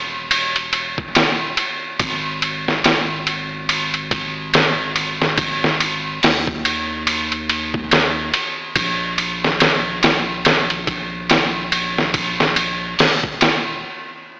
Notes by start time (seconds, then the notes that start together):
Already playing: E1
0.31 ride
0.56 ride
0.73 ride
0.98 kick
1.15 snare, ride
1.57 ride
1.99 G#1, kick, ride
2.42 ride
2.68 snare
2.84 snare, ride
3.27 ride
3.69 ride
3.94 ride
4.11 kick, ride
4.54 snare, ride
4.96 ride
5.22 snare
5.38 kick, ride
5.64 snare
5.80 ride
6.23 D#2, snare, open hi-hat
6.47 kick
6.65 ride
7.07 ride
7.32 ride
7.49 ride
7.74 kick
7.91 snare, ride
8.34 ride
8.76 A#1, kick, ride
9.18 ride
9.44 snare
9.60 snare, ride
10.03 snare, ride
10.45 snare, ride
10.70 ride
10.87 kick, ride
11.29 snare, ride
11.72 ride
11.98 snare
12.14 kick, ride
12.40 snare
12.56 ride
12.99 E1, snare, open hi-hat
13.23 kick
13.41 snare, ride